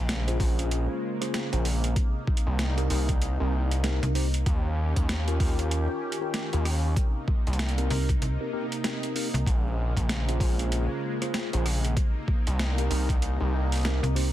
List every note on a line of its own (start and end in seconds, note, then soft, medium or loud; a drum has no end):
0.00 0.38 A#1 loud
0.00 1.94 C#3 medium
0.00 1.94 G#3 medium
0.00 4.43 A#3 medium
0.09 snare loud
0.09 closed hi-hat medium
0.28 0.37 C#4 loud
0.28 0.37 F4 medium
0.28 0.37 G#4 medium
0.28 0.37 C5 loud
0.28 closed hi-hat soft
0.40 0.87 A#1 loud
0.40 1.17 C#4 medium
0.40 1.17 F4 medium
0.40 1.17 G#4 medium
0.40 1.17 C5 loud
0.40 kick loud
0.40 open hi-hat medium
0.59 closed hi-hat medium
0.71 closed hi-hat medium
1.21 1.48 C#4 medium
1.21 1.48 F4 medium
1.21 1.48 G#4 medium
1.21 1.48 C5 loud
1.21 cross-stick soft
1.21 closed hi-hat medium
1.34 snare loud
1.34 closed hi-hat medium
1.52 1.95 A#1 loud
1.52 1.65 C#4 loud
1.52 1.65 F4 medium
1.52 1.65 G#4 medium
1.52 1.65 C5 loud
1.52 closed hi-hat soft
1.65 open hi-hat medium
1.84 closed hi-hat medium
1.96 4.44 C3 medium
1.96 4.44 D#4 medium
1.96 kick loud
1.96 closed hi-hat medium
2.27 kick loud
2.37 closed hi-hat medium
2.47 2.88 C2 loud
2.59 snare loud
2.59 closed hi-hat medium
2.77 2.88 C4 medium
2.77 2.88 D#4 medium
2.77 2.88 G4 medium
2.77 2.88 A#4 loud
2.77 closed hi-hat soft
2.90 3.37 C2 loud
2.90 3.09 C4 medium
2.90 3.09 D#4 medium
2.90 3.09 G4 medium
2.90 3.09 A#4 loud
2.90 open hi-hat medium
3.09 kick loud
3.09 closed hi-hat medium
3.22 closed hi-hat medium
3.40 4.00 C2 loud
3.40 3.52 C4 medium
3.40 3.52 D#4 medium
3.40 3.53 G4 medium
3.40 3.53 A#4 medium
3.71 closed hi-hat medium
3.84 4.12 C4 medium
3.84 4.12 D#4 medium
3.84 4.12 G4 medium
3.84 4.12 A#4 loud
3.84 snare loud
3.84 closed hi-hat medium
4.03 4.45 C2 loud
4.03 closed hi-hat soft
4.15 4.27 C4 loud
4.15 4.27 D#4 medium
4.15 4.27 G4 medium
4.15 4.27 C5 loud
4.15 open hi-hat medium
4.34 closed hi-hat medium
4.46 4.94 D#2 medium
4.46 6.94 D#3 medium
4.46 6.94 C#4 medium
4.46 6.94 G4 medium
4.46 kick loud
4.46 closed hi-hat medium
4.96 5.38 D#2 loud
4.96 kick medium
4.96 closed hi-hat medium
5.09 snare loud
5.09 closed hi-hat medium
5.28 5.37 C#4 loud
5.28 5.37 F4 medium
5.28 5.37 G4 medium
5.28 5.37 A#4 loud
5.28 closed hi-hat soft
5.40 5.87 D#2 loud
5.40 6.17 C#4 loud
5.40 6.17 F4 medium
5.40 6.17 G4 medium
5.40 6.17 A#4 loud
5.40 kick loud
5.40 open hi-hat medium
5.59 closed hi-hat medium
5.71 closed hi-hat medium
6.12 closed hi-hat medium
6.21 6.48 C#4 medium
6.21 6.48 F4 medium
6.21 6.48 G4 medium
6.21 6.48 A#4 loud
6.34 snare loud
6.34 closed hi-hat medium
6.53 6.95 D#2 loud
6.53 6.65 C#4 loud
6.53 6.65 F4 medium
6.53 6.65 G4 medium
6.53 6.65 A#4 loud
6.53 closed hi-hat soft
6.65 cross-stick medium
6.65 open hi-hat medium
6.96 9.44 C3 medium
6.96 11.92 A#3 medium
6.96 9.44 D#4 medium
6.96 kick loud
6.96 closed hi-hat medium
7.28 kick loud
7.47 7.89 C2 loud
7.47 closed hi-hat soft
7.53 closed hi-hat soft
7.59 snare loud
7.59 closed hi-hat medium
7.69 closed hi-hat soft
7.78 7.88 C4 medium
7.78 7.88 D#4 medium
7.78 7.88 G4 medium
7.78 7.88 A#4 loud
7.78 closed hi-hat soft
7.90 8.20 C2 loud
7.90 8.09 C4 medium
7.90 8.09 D#4 medium
7.90 8.09 G4 medium
7.90 8.09 A#4 loud
7.90 open hi-hat medium
8.09 kick loud
8.09 closed hi-hat medium
8.22 8.38 C2 medium
8.22 closed hi-hat medium
8.41 8.50 C4 medium
8.41 8.51 D#4 medium
8.41 8.50 G4 medium
8.41 8.51 A#4 medium
8.53 8.65 C4 medium
8.53 8.65 D#4 medium
8.53 8.65 G4 medium
8.53 8.65 A#4 loud
8.72 closed hi-hat medium
8.84 9.12 C4 medium
8.84 9.12 D#4 medium
8.84 9.12 G4 medium
8.84 9.12 A#4 medium
8.84 snare loud
8.84 closed hi-hat medium
9.03 closed hi-hat soft
9.15 9.27 C4 medium
9.15 9.27 D#4 medium
9.15 9.27 G4 medium
9.15 9.27 A#4 loud
9.15 open hi-hat medium
9.34 9.45 C2 loud
9.34 closed hi-hat medium
9.47 9.94 A#1 medium
9.47 11.94 C#3 medium
9.47 11.94 G#3 medium
9.47 kick loud
9.47 closed hi-hat medium
9.97 10.38 A#1 loud
9.97 kick medium
9.97 closed hi-hat medium
10.09 snare loud
10.09 closed hi-hat medium
10.28 10.37 C#4 loud
10.28 10.37 F4 medium
10.28 10.37 G#4 medium
10.28 10.37 C5 loud
10.28 closed hi-hat soft
10.40 10.87 A#1 loud
10.40 11.17 C#4 medium
10.40 11.17 F4 medium
10.40 11.17 G#4 medium
10.40 11.17 C5 loud
10.40 kick loud
10.40 open hi-hat medium
10.59 closed hi-hat soft
10.72 closed hi-hat medium
11.22 11.48 C#4 medium
11.22 11.48 F4 medium
11.22 11.48 G#4 medium
11.22 11.48 C5 loud
11.22 cross-stick soft
11.22 closed hi-hat medium
11.34 snare loud
11.34 closed hi-hat medium
11.53 11.95 A#1 loud
11.53 11.65 C#4 loud
11.53 11.65 F4 medium
11.53 11.65 G#4 medium
11.53 11.65 C5 loud
11.53 closed hi-hat soft
11.66 cross-stick medium
11.66 open hi-hat medium
11.85 closed hi-hat medium
11.97 14.33 C3 medium
11.97 14.33 A#3 medium
11.97 14.33 D#4 medium
11.97 kick loud
11.97 closed hi-hat medium
12.28 kick loud
12.47 12.89 C2 loud
12.47 closed hi-hat medium
12.59 snare loud
12.59 closed hi-hat medium
12.78 12.89 C4 medium
12.78 12.89 D#4 medium
12.78 12.89 G4 medium
12.78 12.89 A#4 loud
12.78 closed hi-hat soft
12.90 13.38 C2 loud
12.90 13.09 C4 medium
12.90 13.09 D#4 medium
12.90 13.09 G4 medium
12.90 13.09 A#4 loud
12.90 open hi-hat medium
13.09 kick loud
13.09 closed hi-hat medium
13.22 closed hi-hat medium
13.40 14.00 C2 loud
13.40 13.53 C4 medium
13.40 13.53 D#4 medium
13.40 13.53 G4 medium
13.40 13.53 A#4 medium
13.72 closed hi-hat soft
13.74 closed hi-hat soft
13.76 closed hi-hat soft
13.77 closed hi-hat soft
13.79 closed hi-hat soft
13.81 closed hi-hat soft
13.83 14.12 C4 loud
13.83 14.12 D#4 medium
13.83 14.12 G4 medium
13.83 14.12 A#4 loud
13.83 snare loud
13.83 closed hi-hat soft
13.85 closed hi-hat medium
14.03 14.33 C2 medium
14.03 closed hi-hat soft
14.15 14.27 C4 loud
14.15 14.27 D#4 medium
14.15 14.27 G4 medium
14.15 14.27 C5 loud
14.15 open hi-hat medium